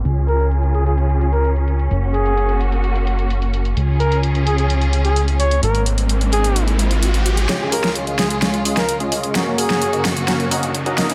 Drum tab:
HH |x-xxxxxxxxxxxxxx|x-xxxxxxxxxxxxxx|x-xxxxxxxxxxxxxx|xxxxxxxxxxxxxxxx|
SD |----------------|----------------|----------------|----------------|

HH |x-oxxxoxxxoxxxox|x-oxxxoxxxoxxxox|
SD |o--o--o-o--o----|o--o--o-o-----o-|